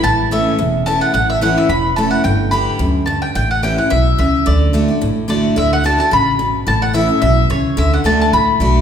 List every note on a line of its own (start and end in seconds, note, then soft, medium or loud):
0.03 0.45 A1 medium
0.03 0.57 A2 medium
0.03 0.29 A5 loud
0.31 0.58 E3 medium
0.31 0.58 A3 medium
0.31 0.58 C#4 loud
0.31 0.59 E4 medium
0.31 0.83 E5 medium
0.59 1.00 E1 medium
0.59 1.12 E2 medium
0.86 1.13 E3 medium
0.86 1.13 A3 medium
0.86 1.13 C#4 medium
0.86 1.14 E4 medium
0.86 1.01 A5 loud
1.01 1.13 F#5 medium
1.14 1.56 A1 medium
1.14 1.67 A2 medium
1.14 1.29 F#5 loud
1.30 1.41 E5 medium
1.41 1.68 E3 medium
1.41 1.68 A3 medium
1.41 1.69 C#4 loud
1.41 1.69 E4 medium
1.41 1.57 F#5 medium
1.58 1.69 E5 medium
1.69 2.11 E1 medium
1.69 2.23 E2 medium
1.69 1.96 B5 loud
1.96 2.23 E3 medium
1.96 2.24 A3 medium
1.96 2.24 C#4 medium
1.96 2.25 E4 loud
1.96 2.10 A5 medium
2.11 2.23 F#5 medium
2.24 2.66 G1 medium
2.24 2.78 G2 medium
2.24 2.50 G5 medium
2.51 2.79 D3 medium
2.51 2.79 G3 medium
2.51 2.79 B3 medium
2.51 2.80 G4 medium
2.51 3.05 B5 medium
2.79 3.21 D2 medium
2.79 3.06 F#2 medium
3.06 3.34 G2 medium
3.06 3.21 A5 medium
3.22 3.34 G5 medium
3.35 3.77 A1 medium
3.35 3.88 A2 medium
3.35 3.50 G5 loud
3.51 3.62 F#5 medium
3.63 3.77 E3 medium
3.63 3.78 G3 medium
3.63 3.78 C#4 medium
3.63 3.77 E4 loud
3.63 3.78 G5 medium
3.78 3.91 C#4 soft
3.78 3.90 E4 medium
3.78 3.90 F#5 medium
3.90 4.15 B1 medium
3.90 4.17 B2 medium
3.90 4.18 E5 medium
4.18 4.43 C#2 medium
4.18 4.45 C#3 medium
4.18 4.48 E5 medium
4.46 4.88 D2 medium
4.46 4.72 D3 medium
4.46 5.25 D5 medium
4.73 4.88 D3 medium
4.73 4.88 A3 medium
4.73 4.88 D4 loud
4.73 4.87 F#4 medium
4.88 5.02 D4 soft
4.88 5.01 F#4 medium
5.01 5.43 A1 medium
5.01 5.54 A2 medium
5.28 5.55 D3 medium
5.28 5.55 A3 medium
5.28 5.56 D4 medium
5.28 5.56 F#4 medium
5.28 5.55 D5 medium
5.56 5.98 D2 medium
5.56 5.83 D3 medium
5.56 5.72 E5 loud
5.73 5.84 F#5 medium
5.84 5.98 D3 medium
5.84 5.99 A3 medium
5.84 5.99 D4 medium
5.84 5.97 F#4 medium
5.84 5.99 A5 loud
5.98 6.12 D4 soft
5.98 6.11 F#4 medium
5.98 6.11 A5 loud
6.11 6.54 A1 medium
6.11 6.38 C#3 medium
6.11 6.64 B5 loud
6.39 6.66 B2 medium
6.67 7.08 A1 medium
6.67 7.20 A2 medium
6.67 6.81 A5 loud
6.82 6.94 F#5 medium
6.93 7.08 E3 medium
6.93 7.09 A3 medium
6.93 7.09 C#4 medium
6.93 7.07 E4 loud
6.93 7.20 E5 medium
7.09 7.22 C#4 soft
7.09 7.21 E4 medium
7.22 7.46 B1 medium
7.22 7.48 B2 medium
7.22 7.50 E5 loud
7.50 7.74 C#2 medium
7.50 7.76 C#3 medium
7.50 7.79 C#5 medium
7.77 7.98 D2 medium
7.77 8.03 D3 medium
7.77 7.92 E5 loud
7.94 8.05 F#5 medium
8.04 8.28 D2 medium
8.04 8.31 D3 medium
8.04 8.31 A3 medium
8.04 8.32 D4 medium
8.04 8.32 F#4 loud
8.04 8.20 A5 loud
8.21 8.33 A5 loud
8.33 8.56 C#2 medium
8.33 8.81 A2 medium
8.33 8.81 B5 loud
8.60 8.81 B1 medium
8.60 8.81 D3 medium
8.60 8.81 A3 medium
8.60 8.81 D4 medium
8.60 8.81 F#4 loud